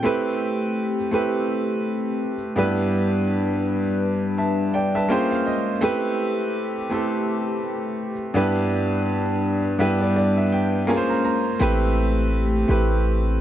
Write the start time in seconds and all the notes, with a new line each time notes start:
Already playing: G5
0.03 A3 C4 E4 G4 B4
1.11 A3 C4 E4 G4 B4
2.56 G2 G3 B3 D4 E4 G4 B4
4.38 E5 A5
4.74 D5 G5
4.95 B4 E5 A5
5.09 A#3 C#4 F4 G#4 C5 G5
5.31 F5
5.46 D#5
5.81 A3 C4 E4 G4 B4
6.89 A3 C4 E4 G4 A4
8.34 G2 G3 B3 D4 E4 G4 B4
9.79 G2 B3 D4 E4 G4 B4 E5
10.01 D5
10.16 D5
10.37 E5
10.52 G5
10.87 A#3 C#4 F4 G#4 A#4 G#5
10.96 C5
11.09 A#5
11.25 A#5
11.59 A1 A3 C4 E4 G4 B4
12.68 A1 A3 C4 E4 G4 B4